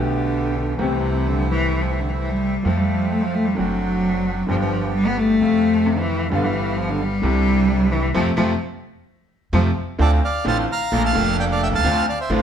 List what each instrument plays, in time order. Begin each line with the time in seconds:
Already playing: grand piano B1 B2 D3 A3 B3 G4, upright bass B1, cello D3, bandoneon A3 B3 G4
0.77 upright bass C2, grand piano C2 C3 E3 A3 C4, cello C3, bandoneon A3 C4 E4
0.81 grand piano G4
0.92 cello C3
1.27 cello D3
1.39 cello F3
1.50 cello E3
1.81 cello F3
1.91 cello E3
2.00 cello D3
2.09 cello E3
2.18 cello E3
2.30 cello G3
2.63 grand piano F2 F3 A3 C4, upright bass F2, cello F3, bandoneon A3 C4 F4
2.67 grand piano A4
2.77 cello G3
3.12 cello A3
3.24 cello F3
3.34 cello A3
3.45 cello G3
3.55 upright bass F#1, grand piano F#2 D3 F#3 A3 C4 F#4, cello F#3, bandoneon C4 D4 F#4
4.47 grand piano G1 G2 D3 G3 B3 G4, upright bass G1, cello F3, bandoneon B3 D4 G4
4.60 cello F3
4.94 cello G3
5.07 cello B3
5.18 cello A3
5.39 upright bass F2, grand piano F2 C3 A3, bandoneon A3 C4 F5
5.43 grand piano F5
5.86 cello C3
5.98 cello E3
6.30 upright bass G1, grand piano G1 G2 D3 G3 B3 F5, cello D3, bandoneon G3 B3 F5
6.44 cello E3
6.77 cello F3
6.89 cello D3
7.01 cello G3
7.22 upright bass C2, grand piano C2 C3 D3 G3 C4 E4, bandoneon C4 D4 E4
7.92 cello E3
8.14 upright bass F2, grand piano C3 F3 A3, cello F3, bandoneon A3 C4 F4
8.37 upright bass F2, grand piano C3 F3 A3, cello F3, bandoneon A3 C4 F4
9.53 upright bass F2, grand piano C3 F3 A3, cello F3, bandoneon A3 C4 F4
9.99 grand piano D2 D3 A3 C4 F4, upright bass D2, bandoneon C4 D4 F4 A4 D5
10.25 bandoneon D5 F5
10.45 grand piano A1 A2 D3 A3 C4 F4, upright bass A1, bandoneon C4 D4 F4 F5 A5
10.72 bandoneon F5 A#5
10.92 upright bass A#1, grand piano A#1 A#2 D3 A3 A#3 F4, bandoneon A#3 D4 A4
11.06 bandoneon F5 A5
11.13 grand piano F1 F2 D3 A3 A#3 F4, upright bass F1, bandoneon D4 A4
11.40 bandoneon D5 G5
11.52 bandoneon D5 F5
11.63 bandoneon E5 G5
11.67 grand piano B1, upright bass B1
11.73 upright bass C2, grand piano C2, bandoneon F5 A5
11.78 upright bass C#2, grand piano C#2
11.84 upright bass D2, grand piano D2 D3 A3 C4 F4, bandoneon C4 D4 F4
12.09 bandoneon D5 F5
12.21 bandoneon C5 E5
12.30 upright bass A1, grand piano A1 A2 D3 A3 C4 F4, bandoneon C4 D4 F4